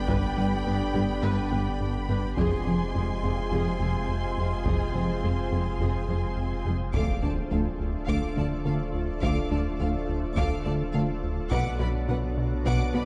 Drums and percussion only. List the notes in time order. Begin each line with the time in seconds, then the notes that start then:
0.08 taiko
2.38 taiko
4.66 taiko
6.94 taiko
8.08 taiko
9.23 taiko
10.37 taiko
11.51 taiko
12.66 taiko